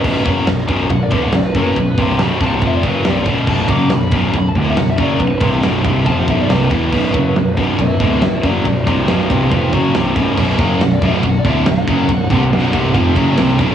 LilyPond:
<<
  \new Staff \with { instrumentName = "Lead electric guitar" } { \time 4/4 \key b \minor \tempo 4 = 139 b'8 r4. fis''16 d''16 b'16 fis''16 d''16 b'16 b'8~ | b'8 r8 b''8 a''16 fis''16 e''16 d''16 b'8 d''8 r8 | a''8 d'''8 b''8 r8 b''16 a''16 fis''16 e''16 fis''16 e''16 d''8 | b'8 r4 b''8 a''16 fis''16 e''16 d''16 b'8 b'8~ |
b'4. r8 <b' e''>8 <b' e''>8 <b' e''>8 <fis' d''>8 | <fis' d''>8 <fis' d''>8 <d' b'>8 <d' b'>8 <d' b'>8 fis'8 r4 | r4 fis''16 d''16 e''16 fis''16 fis''16 d''16 e''16 fis''16 fis''4~ | fis''2 r2 | }
  \new Staff \with { instrumentName = "Distorted electric guitar" } { \clef bass \time 4/4 \key b \minor <b,, fis, b,>8 <fis, cis fis>8 <b,, fis,>8 <b,, fis, b,>8 <b,, fis,>8 <d, a, d>8 <b,, fis,>8 <fis, cis fis>8 | <b,, fis,>8 <c, g, c>8 <b,, fis, b,>8 <c, g, c>8 <eis, c eis>8 <fis, cis fis>8 <c, g, c>8 <b,, fis, b,>8 | <b,, fis, b,>8 <fis, cis fis>8 <b,, fis,>8 <b,, fis, b,>8 <b,, fis,>8 <d, a, d>8 <b,, fis,>8 <fis, cis fis>8 | <b,, fis,>8 <c, g, c>8 <b,, fis, b,>8 <c, g, c>8 <eis, c eis>8 <b,, fis, b,>8 <c, g, c>8 <e, b, e>8 |
<b,, fis, b,>8 <fis, cis fis>8 <b,, fis,>8 <b,, fis, b,>8 <b,, fis,>8 <d, a, d>8 <b,, fis,>8 <fis, cis fis>8 | <b,, fis,>8 <c, g, c>8 <b,, fis, b,>8 <c, g, c>8 <eis, c eis>8 <fis, cis fis>8 <c, g, c>8 <b,, fis, b,>8 | <b,, fis, b,>8 <fis, cis fis>8 <b,, fis,>8 <b,, fis, b,>8 <b,, fis,>8 <d, a, d>8 <b,, fis,>8 <fis, cis fis>8 | <b,, fis,>8 <c, g, c>8 <b,, fis, b,>8 <c, g, c>8 <eis, c eis>8 <fis, cis fis>8 <c, g, c>8 <b,, fis, b,>8 | }
  \new Staff \with { instrumentName = "Distorted electric guitar" } { \clef bass \time 4/4 \key b \minor r1 | r1 | r1 | r1 |
r1 | r1 | <b,, fis, b,>8 <fis, cis fis>8 <b,, fis,>8 <b,, fis, b,>8 <b,, fis,>8 <d, a, d>8 <b,, fis,>8 <fis, cis fis>8 | <b,, fis,>8 <c, g, c>8 <b,, fis, b,>8 <c, g, c>8 <eis, c eis>8 <fis, cis fis>8 <c, g, c>8 <b,, fis, b,>8 | }
  \new Staff \with { instrumentName = "Distorted electric guitar" } { \clef bass \time 4/4 \key b \minor r1 | r1 | <b,, fis, b,>8 <fis, cis fis>8 <b,, fis,>8 <b,, fis, b,>8 <b,, fis,>8 <d, a, d>8 <b,, fis,>8 <fis, cis fis>8 | <b,, fis,>8 <c, g, c>8 <b,, fis, b,>8 <c, g, c>8 <eis, c eis>8 <b,, fis, b,>8 <c, g, c>8 <e, b, e>8 |
<b,, fis, b,>8 <fis, cis fis>8 <b,, fis,>8 <b,, fis, b,>8 <b,, fis,>8 <d, a, d>8 <b,, fis,>8 <fis, cis fis>8 | <b,, fis,>8 <c, g, c>8 <b,, fis, b,>8 <c, g, c>8 <eis, c eis>8 <fis, cis fis>8 <c, g, c>8 <b,, fis, b,>8 | <b,, fis, b,>8 <fis, cis fis>8 <b,, fis,>8 <b,, fis, b,>8 <b,, fis,>8 <d, a, d>8 <b,, fis,>8 <fis, cis fis>8 | <b,, fis,>8 <c, g, c>8 <b,, fis, b,>8 <c, g, c>8 <eis, c eis>8 <fis, cis fis>8 <c, g, c>8 <b,, fis, b,>8 | }
  \new Staff \with { instrumentName = "Picked electric bass" } { \clef bass \time 4/4 \key b \minor b,,,8 fis,,8 b,,,8 b,,,8 b,,,8 d,,8 b,,,8 fis,,8 | b,,,8 c,,8 b,,,8 c,,8 eis,,8 fis,,8 c,,8 b,,,8 | b,,,8 fis,,8 b,,,8 b,,,8 b,,,8 d,,8 b,,,8 fis,,8 | b,,,8 c,,8 b,,,8 c,,8 eis,,8 b,,,8 c,,8 e,,8 |
b,,,8 fis,,8 b,,,8 b,,,8 b,,,8 d,,8 b,,,8 fis,,8 | b,,,8 c,,8 b,,,8 c,,8 eis,,8 fis,,8 c,,8 b,,,8 | b,,,8 fis,,8 b,,,8 b,,,8 b,,,8 d,,8 b,,,8 fis,,8 | b,,,8 c,,8 b,,,8 c,,8 eis,,8 fis,,8 c,,8 b,,,8 | }
  \new DrumStaff \with { instrumentName = "Drums" } \drummode { \time 4/4 <cymc bd>8 <bd cymr>8 <cymr sn>8 <bd cymr>8 <bd cymr>8 <bd cymr>8 <cymr sn>8 <bd cymr>8 | <bd cymr>8 <bd cymr>8 <cymr sn>8 <bd cymr>8 <bd cymr>8 <bd cymr>8 <cymr sn>8 <bd cymr>8 | <cymc bd>8 <bd cymr>8 <cymr sn>8 <bd cymr>8 <bd cymr>8 <bd cymr>8 <cymr sn>8 <bd cymr>8 | <bd cymr>8 <bd cymr>8 <cymr sn>8 <bd cymr>8 <bd cymr>8 <bd cymr>8 <cymr sn>8 <bd cymr>8 |
<cymc bd>8 <bd cymr>8 <cymr sn>8 <bd cymr>8 <bd cymr>8 <bd cymr>8 <cymr sn>8 <bd cymr>8 | <bd cymr>8 <bd cymr>8 <cymr sn>8 <bd cymr>8 <bd cymr>8 <bd cymr>8 <cymr sn>8 <bd cymr>8 | <cymc bd>8 <bd cymr>8 <cymr sn>8 <bd cymr>8 <bd cymr>8 <bd cymr>8 <cymr sn>8 <bd cymr>8 | <bd cymr>8 <bd cymr>8 <cymr sn>8 <bd cymr>8 <bd cymr>8 <bd cymr>8 <cymr sn>8 <bd cymr>8 | }
>>